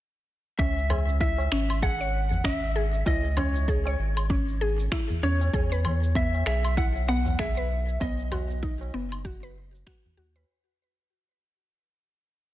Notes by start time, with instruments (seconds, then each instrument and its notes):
0.58 sub bass C#2, synth pluck C#4, electric slide guitar E5, kick, tabla na, shaker
0.78 shaker
0.90 synth pluck G#4, tabla na, tabla ge, low woodblock
1.09 shaker
1.21 synth pluck E4, electric slide guitar E5, kick, shaker
1.38 tabla na, tabla tin, shaker
1.52 sub bass G#1, synth pluck C#4, finger snap
1.70 low woodblock, shaker
1.82 synth pluck G#4, electric slide guitar F#5, kick, shaker
2.00 synth pluck C#5, tabla tin, shaker
2.31 tabla na, tabla ge, shaker
2.44 sub bass G#1, synth pluck C#4, electric slide guitar E5, finger snap, kick, shaker
2.64 shaker
2.76 synth pluck G#4
2.94 shaker
3.06 sub bass C#2, synth pluck E4, electric slide guitar D#5, kick, tabla na, shaker
3.25 shaker
3.37 synth pluck C#4, electric slide guitar C#5, tabla na, tabla ge, low woodblock
3.56 shaker
3.68 synth pluck G#4, kick, shaker
3.85 synth pluck C#5, tabla na, tabla tin, shaker
3.99 sub bass G#1
4.17 low woodblock, shaker
4.30 synth pluck C#4, kick, shaker
4.48 shaker
4.61 synth pluck G#4
4.79 tabla tin, shaker
4.92 synth pluck E4, finger snap, kick, shaker
5.10 tabla ge, shaker
5.23 sub bass E2, synth pluck C#4, electric slide guitar C#5
5.41 tabla na, shaker
5.53 sub bass E2, synth pluck G#4, kick, tabla na, shaker
5.72 synth pluck B4, shaker
5.85 tabla na, tabla ge, low woodblock
6.04 shaker
6.15 synth pluck B3, electric slide guitar E5, kick, shaker
6.33 tabla na, tabla tin, shaker
6.46 sub bass B1, synth pluck G#4, electric slide guitar E5, finger snap, tabla na
6.65 low woodblock, shaker
6.77 synth pluck E4, electric slide guitar F#5, kick, shaker
6.95 tabla tin, shaker
7.08 synth pluck B3, electric slide guitar F#5
7.26 tabla na, tabla ge, shaker
7.39 sub bass B1, synth pluck G#4, electric slide guitar E5, finger snap, kick, shaker
7.57 synth pluck B4, shaker
7.89 shaker
8.00 sub bass B1, synth pluck B3, electric slide guitar D#5, kick, tabla na, shaker
8.20 shaker
8.31 synth pluck F#4, tabla na, tabla ge, low woodblock
8.51 shaker
8.63 synth pluck D#4, kick, shaker
8.81 tabla na, tabla tin, shaker
8.94 sub bass F#1, synth pluck B3
9.12 low woodblock, shaker
9.25 synth pluck F#4, kick, shaker
9.43 synth pluck B4, shaker
9.73 tabla tin, shaker
9.87 synth pluck F#4, finger snap, kick, shaker
10.05 tabla ge, shaker
10.17 sub bass D#2, synth pluck F#4
10.36 synth pluck B4, tabla na, shaker